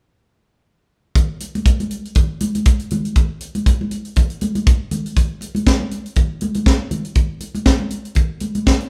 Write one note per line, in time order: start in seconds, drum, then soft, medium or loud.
1.15 kick medium
1.15 closed hi-hat medium
1.15 muted conga soft
1.15 low conga medium
1.40 closed hi-hat medium
1.40 muted conga soft
1.55 closed hi-hat soft
1.55 high conga medium
1.66 kick medium
1.66 closed hi-hat medium
1.66 muted conga soft
1.80 closed hi-hat soft
1.80 high conga medium
1.91 closed hi-hat medium
2.05 closed hi-hat soft
2.15 kick medium
2.15 closed hi-hat medium
2.15 low conga medium
2.40 closed hi-hat medium
2.40 muted conga soft
2.40 high conga medium
2.55 closed hi-hat soft
2.55 high conga medium
2.65 kick loud
2.65 closed hi-hat medium
2.79 closed hi-hat soft
2.90 closed hi-hat medium
2.90 muted conga soft
2.90 high conga medium
2.90 low conga medium
3.05 closed hi-hat soft
3.15 kick medium
3.15 closed hi-hat medium
3.15 muted conga soft
3.15 low conga medium
3.40 closed hi-hat medium
3.55 closed hi-hat soft
3.55 high conga medium
3.66 kick medium
3.66 closed hi-hat medium
3.66 muted conga soft
3.81 high conga medium
3.91 closed hi-hat medium
3.91 muted conga soft
4.05 closed hi-hat soft
4.16 kick medium
4.16 closed hi-hat medium
4.16 muted conga soft
4.16 low conga medium
4.30 closed hi-hat soft
4.41 closed hi-hat medium
4.41 muted conga soft
4.41 high conga medium
4.55 closed hi-hat soft
4.55 high conga medium
4.66 kick loud
4.66 closed hi-hat medium
4.66 muted conga soft
4.91 closed hi-hat medium
4.91 high conga medium
4.91 low conga medium
5.06 closed hi-hat soft
5.16 kick medium
5.16 closed hi-hat medium
5.16 low conga medium
5.41 closed hi-hat medium
5.41 muted conga soft
5.55 closed hi-hat soft
5.55 high conga medium
5.67 kick loud
5.67 snare loud
5.80 high conga medium
5.91 closed hi-hat medium
5.91 muted conga soft
6.06 closed hi-hat soft
6.16 kick loud
6.16 closed hi-hat medium
6.16 muted conga soft
6.16 low conga medium
6.41 closed hi-hat medium
6.41 muted conga soft
6.41 high conga medium
6.54 closed hi-hat soft
6.54 high conga medium
6.66 kick loud
6.66 snare medium
6.66 muted conga soft
6.91 closed hi-hat medium
6.91 high conga medium
6.91 low conga medium
7.05 closed hi-hat soft
7.15 kick medium
7.15 closed hi-hat medium
7.15 muted conga soft
7.15 low conga medium
7.40 closed hi-hat medium
7.40 muted conga soft
7.55 closed hi-hat soft
7.55 high conga medium
7.66 kick loud
7.66 snare loud
7.66 muted conga soft
7.80 high conga medium
7.90 closed hi-hat medium
7.90 muted conga soft
8.05 closed hi-hat soft
8.15 kick medium
8.15 closed hi-hat medium
8.15 low conga medium
8.40 closed hi-hat medium
8.40 high conga medium
8.55 closed hi-hat soft
8.55 high conga medium
8.66 kick loud
8.66 snare loud
8.66 muted conga soft
8.80 closed hi-hat soft